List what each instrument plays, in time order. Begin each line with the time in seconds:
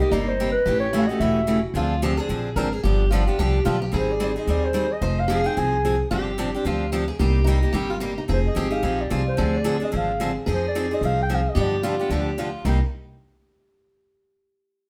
Already playing: steel-string acoustic guitar G4
0.00 steel-string acoustic guitar A#3 D#4 G4, clarinet D#5
0.11 upright bass G1, steel-string acoustic guitar C3 G3 A#3 D#4 G4, clarinet D5
0.28 clarinet C5
0.40 steel-string acoustic guitar C3 G3 A#3 D#4 G4
0.52 clarinet B4
0.66 upright bass A1, steel-string acoustic guitar C#3 E3 A3 C#4 G4
0.80 clarinet C#5
0.93 steel-string acoustic guitar C#3 E3 A3 C#4 F#4 G4
1.07 steel-string acoustic guitar A3 C#4 G4, clarinet D#5
1.20 upright bass E1, steel-string acoustic guitar C#3 E3 A3 C#4 G4, clarinet E5
1.47 steel-string acoustic guitar C#3 E3 A3 C#4 G4
1.74 upright bass D2, steel-string acoustic guitar D3 F3 C4 D4 F4 G#4
2.02 steel-string acoustic guitar D3 F3 C4 D4 G4 G#4
2.19 steel-string acoustic guitar C4 D4 G#4
2.29 upright bass A#1, steel-string acoustic guitar D3 F3 C4 D4 G#4
2.56 upright bass G#1, steel-string acoustic guitar D3 F3 C4 D4 G#4 A#4
2.73 steel-string acoustic guitar G#4
2.84 upright bass G1, steel-string acoustic guitar D3 F3 B3 D4 G4
3.11 steel-string acoustic guitar D3 F3 B3 D4 F4 G4
3.27 steel-string acoustic guitar B3 D4 G4
3.39 upright bass C2, steel-string acoustic guitar D3 F3 B3 D4 G4
3.65 upright bass B1, steel-string acoustic guitar D3 F3 B3 D4 F4 G4
3.82 steel-string acoustic guitar G4
3.92 upright bass G#1, steel-string acoustic guitar D#3 G3 C4 D#4 G#4
3.97 clarinet C5
4.12 clarinet D5
4.20 steel-string acoustic guitar D#3 G3 C4 D#4 G#4, clarinet D5
4.36 steel-string acoustic guitar C4 D#4 G#4, clarinet D#5
4.47 upright bass D#2, steel-string acoustic guitar D#3 G3 C4 D#4 G#4, clarinet D5
4.65 clarinet C5
4.73 steel-string acoustic guitar D#3 G3 C4 D#4 G#4
4.92 clarinet D#5
5.01 upright bass F1, steel-string acoustic guitar F3 C4 D#4 G#4 C5
5.20 clarinet F5
5.30 steel-string acoustic guitar F3 C4 D#4 G#4
5.44 steel-string acoustic guitar C4 D#4 G#4, clarinet G5
5.57 upright bass C2, steel-string acoustic guitar F3 C4 D#4 G#4, clarinet G#5
5.85 steel-string acoustic guitar F3 C4 D#4 G#4
6.11 upright bass G1, steel-string acoustic guitar C3 F3 C4 D4 G4
6.38 steel-string acoustic guitar C3 F3 C4 D4 G4
6.54 steel-string acoustic guitar C4 D4 G4
6.65 upright bass D2, steel-string acoustic guitar C3 F3 C4 D4 F4 G4
6.93 steel-string acoustic guitar C3 F3 C4 D4 G4
7.08 steel-string acoustic guitar G#4
7.19 upright bass C2, steel-string acoustic guitar C3 G3 A#3 D#4 G4
7.47 steel-string acoustic guitar C3 G3 A#3 D#4 G4
7.63 steel-string acoustic guitar A#3 D#4 G4
7.73 upright bass G1, steel-string acoustic guitar C3 G3 A#3 D#4 G4
7.90 steel-string acoustic guitar F4
8.00 steel-string acoustic guitar C3 G3 A#3 D#4 G4
8.18 steel-string acoustic guitar D#4
8.28 upright bass F1, steel-string acoustic guitar F3 C4 D#4 G#4
8.33 clarinet C5
8.47 clarinet D#5
8.55 upright bass G#1, steel-string acoustic guitar F3 C4 D#4 G4 G#4
8.70 steel-string acoustic guitar C4 D#4 G#4, clarinet F5
8.83 upright bass A#1, steel-string acoustic guitar F3 C4 D#4 G#4
9.01 clarinet D5
9.10 upright bass C2, steel-string acoustic guitar F3 C4 D#4 F4 G#4
9.28 clarinet C5
9.37 upright bass D2, steel-string acoustic guitar D3 F3 C4 D4 G#4
9.57 clarinet D5
9.64 steel-string acoustic guitar D3 F3 C4 D4 G#4
9.80 steel-string acoustic guitar C4 D4 G#4
9.85 clarinet D#5
9.92 upright bass G#1, steel-string acoustic guitar D3 F3 C4 D4 G#4
9.97 clarinet F5
10.20 steel-string acoustic guitar D3 F3 C4 D4 G#4
10.47 upright bass F2, steel-string acoustic guitar F3 C4 D#4 G#4
10.53 clarinet C5
10.68 clarinet D5
10.75 steel-string acoustic guitar F3 C4 D#4 G#4
10.91 steel-string acoustic guitar C4 D#4 G#4, clarinet D#5
11.01 upright bass C2, steel-string acoustic guitar F3 C4 D#4 G#4
11.06 clarinet F5
11.23 clarinet G5
11.30 steel-string acoustic guitar F3 C4 D#4 G#4
11.35 clarinet F5
11.50 clarinet D#5
11.56 upright bass G2, steel-string acoustic guitar D3 F3 B3 D4 G4
11.61 clarinet D5
11.83 steel-string acoustic guitar D3 F3 B3 D4 F4 G4
11.99 steel-string acoustic guitar B3 D4 G4
12.10 upright bass D2, steel-string acoustic guitar D3 F3 B3 D4 G4
12.38 steel-string acoustic guitar D3 F3 B3 D4 F4 G4
12.65 upright bass C2, steel-string acoustic guitar C3 G3 A#3 D#4 G4, clarinet G5